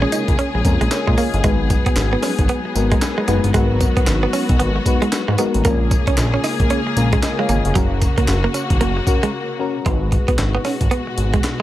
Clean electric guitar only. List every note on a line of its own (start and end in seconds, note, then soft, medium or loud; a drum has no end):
0.02 0.08 C#4 medium
0.12 0.22 D#4 medium
0.39 0.48 C#4 medium
0.55 muted clean electric guitar stroke soft
0.81 0.87 G#3 medium
0.91 muted clean electric guitar stroke soft
1.07 1.14 G#3 medium
1.18 1.27 A#3 medium
1.44 1.54 G#3 medium
1.70 muted clean electric guitar stroke soft
1.86 1.93 B3 medium
1.97 muted clean electric guitar stroke soft
2.13 2.19 B3 medium
2.23 2.33 C#4 medium
2.49 2.59 B3 medium
2.65 muted clean electric guitar stroke soft
2.92 2.98 G#3 medium
3.02 muted clean electric guitar stroke soft
3.18 3.24 G#3 medium
3.28 3.38 B3 medium
3.54 3.64 G#3 medium
3.81 muted clean electric guitar stroke medium
3.97 4.03 B3 medium
4.07 muted clean electric guitar stroke soft
4.23 4.29 B3 medium
4.33 4.43 C#4 medium
4.59 4.69 B3 medium
4.76 muted clean electric guitar stroke soft
5.02 5.08 G#3 medium
5.12 muted clean electric guitar stroke soft
5.28 5.35 G#3 medium
5.39 5.48 B3 medium
5.65 5.75 A#3 medium
5.91 muted clean electric guitar stroke medium
6.08 6.14 C#4 medium
6.18 muted clean electric guitar stroke soft
6.34 6.40 C#4 medium
6.44 6.54 D#4 medium
6.70 6.80 C#4 medium
6.87 muted clean electric guitar stroke soft
7.13 7.19 G#3 medium
7.23 muted clean electric guitar stroke soft
7.39 7.45 G#3 medium
7.49 7.59 A#3 medium
7.75 7.85 F#3 medium
8.02 muted clean electric guitar stroke soft
8.18 8.24 A#3 medium
8.28 muted clean electric guitar stroke soft
8.44 8.50 A#3 medium
8.54 8.64 C#4 medium
8.81 8.91 A#3 medium
8.97 muted clean electric guitar stroke soft
9.23 9.29 G#3 medium
9.86 9.96 G#3 medium
10.12 muted clean electric guitar stroke soft
10.28 10.34 B3 medium
10.39 muted clean electric guitar stroke soft
10.55 10.61 B3 medium
10.65 10.75 C#4 medium
10.91 11.01 B3 medium
11.07 muted clean electric guitar stroke soft
11.34 11.40 G#3 medium
11.44 muted clean electric guitar stroke soft